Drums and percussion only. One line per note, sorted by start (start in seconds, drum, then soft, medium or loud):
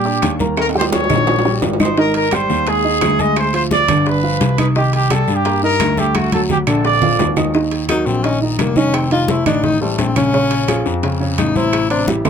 0.05 high bongo soft
0.05 high conga soft
0.22 high bongo medium
0.22 low bongo medium
0.22 high conga medium
0.22 high timbale medium
0.22 short guiro medium
0.22 claves medium
0.39 high conga medium
0.39 short guiro medium
0.57 high bongo medium
0.57 high conga soft
0.57 high timbale medium
0.57 long guiro medium
0.57 claves medium
0.69 high timbale medium
0.75 high bongo soft
0.75 high conga soft
0.81 low timbale loud
0.92 high bongo medium
0.92 high conga medium
0.92 low timbale loud
0.92 short guiro medium
1.04 low timbale medium
1.09 high bongo medium
1.09 high conga soft
1.09 low conga medium
1.09 short guiro medium
1.09 claves medium
1.16 low timbale medium
1.27 low bongo medium
1.27 high conga soft
1.27 low timbale loud
1.27 long guiro medium
1.39 low timbale medium
1.45 low bongo medium
1.45 high conga soft
1.62 low bongo medium
1.62 high conga medium
1.62 low timbale medium
1.62 short guiro medium
1.73 low timbale medium
1.80 low bongo medium
1.80 high conga medium
1.80 short guiro medium
1.80 claves medium
1.85 low timbale medium
1.97 high bongo medium
1.97 high conga soft
1.97 long guiro medium
2.14 high bongo soft
2.14 high conga soft
2.14 high timbale medium
2.31 high bongo medium
2.31 high conga medium
2.31 high timbale loud
2.31 short guiro medium
2.31 claves medium
2.50 high bongo soft
2.50 short guiro medium
2.67 high bongo medium
2.67 high conga soft
2.67 high timbale medium
2.67 long guiro medium
2.85 high bongo soft
2.85 high conga soft
3.01 high bongo medium
3.01 low bongo medium
3.01 high conga medium
3.01 high timbale medium
3.01 low timbale medium
3.01 short guiro medium
3.01 claves medium
3.19 high conga medium
3.19 short guiro medium
3.36 high bongo medium
3.36 high conga soft
3.36 high timbale medium
3.36 long guiro medium
3.36 claves medium
3.54 high bongo soft
3.54 high conga soft
3.54 high timbale medium
3.71 high bongo medium
3.71 high conga medium
3.71 short guiro medium
3.88 high bongo soft
3.88 high conga soft
3.88 low conga medium
3.88 high timbale loud
3.88 short guiro medium
3.88 claves medium
4.06 high bongo medium
4.06 high conga soft
4.06 long guiro medium
4.23 high conga soft
4.41 high bongo medium
4.41 low bongo medium
4.41 high conga medium
4.41 high timbale medium
4.41 short guiro medium
4.58 high bongo soft
4.58 high conga medium
4.58 high timbale medium
4.58 short guiro medium
4.58 claves medium
4.75 high bongo medium
4.75 high conga soft
4.75 long guiro medium
4.93 high bongo soft
4.93 high conga soft
4.93 high timbale medium
5.10 high bongo medium
5.10 high conga medium
5.10 high timbale medium
5.10 short guiro medium
5.10 claves medium
5.28 high bongo soft
5.28 short guiro medium
5.45 high bongo medium
5.45 high conga soft
5.45 high timbale medium
5.45 long guiro medium
5.63 high bongo soft
5.63 high conga soft
5.80 high bongo medium
5.80 low bongo medium
5.80 high conga medium
5.80 high timbale loud
5.80 short guiro medium
5.80 claves medium
5.97 high conga medium
5.97 short guiro medium
6.15 high bongo medium
6.15 high conga medium
6.15 high timbale medium
6.15 long guiro medium
6.15 claves medium
6.32 high bongo soft
6.32 high conga medium
6.32 high timbale medium
6.49 high bongo medium
6.49 low conga medium
6.49 short guiro medium
6.67 high bongo soft
6.67 high timbale medium
6.67 short guiro medium
6.67 claves medium
6.84 high bongo medium
6.84 high timbale medium
6.84 long guiro medium
7.02 low conga medium
7.02 high timbale medium
7.19 high bongo medium
7.19 low bongo medium
7.19 low conga medium
7.19 low timbale medium
7.19 short guiro medium
7.36 high bongo soft
7.36 low conga medium
7.36 low timbale medium
7.36 short guiro medium
7.36 claves medium
7.54 high bongo medium
7.54 high conga soft
7.54 long guiro medium
7.71 high bongo soft
7.71 high conga soft
7.71 high timbale medium
7.88 high bongo medium
7.88 high conga medium
7.88 high timbale loud
7.88 short guiro medium
7.88 claves medium
8.06 high bongo soft
8.06 short guiro medium
8.24 high bongo medium
8.24 high conga soft
8.24 high timbale medium
8.24 long guiro medium
8.41 high bongo soft
8.41 high conga soft
8.59 high bongo medium
8.59 low bongo medium
8.59 high conga medium
8.59 high timbale medium
8.59 short guiro medium
8.59 claves medium
8.76 high conga medium
8.76 short guiro medium
8.93 high bongo medium
8.93 high conga soft
8.93 high timbale medium
8.93 long guiro medium
8.93 claves medium
9.11 high bongo soft
9.11 high conga soft
9.11 high timbale medium
9.28 high bongo medium
9.28 high conga loud
9.28 short guiro medium
9.46 high bongo soft
9.46 high conga soft
9.46 low conga medium
9.46 high timbale medium
9.46 short guiro medium
9.46 claves medium
9.64 high bongo medium
9.64 high conga soft
9.64 low conga medium
9.64 long guiro medium
9.81 high conga soft
9.98 high bongo medium
9.98 low bongo medium
9.98 high conga medium
9.98 high timbale medium
9.98 short guiro medium
10.16 high bongo soft
10.16 high conga medium
10.16 high timbale medium
10.16 short guiro medium
10.16 claves medium
10.33 high bongo medium
10.33 high conga soft
10.33 long guiro medium
10.51 high bongo soft
10.51 high conga soft
10.51 high timbale medium
10.68 high bongo medium
10.68 high conga medium
10.68 high timbale medium
10.68 short guiro medium
10.68 claves medium
10.86 high bongo soft
10.86 short guiro medium
11.03 high bongo medium
11.03 high conga soft
11.03 high timbale medium
11.03 long guiro medium
11.21 high bongo soft
11.21 high conga soft
11.38 high bongo medium
11.38 low bongo medium
11.38 high conga medium
11.38 high timbale loud
11.38 short guiro medium
11.38 claves medium
11.56 high conga medium
11.56 short guiro medium
11.73 high bongo medium
11.73 high conga soft
11.73 high timbale medium
11.73 long guiro medium
11.73 claves medium
11.90 high bongo soft
11.90 high conga soft
11.90 high timbale medium
12.07 high bongo medium
12.07 high conga medium
12.07 short guiro medium
12.25 high bongo medium
12.25 high conga soft
12.25 low conga medium
12.25 high timbale loud
12.25 short guiro medium
12.25 claves medium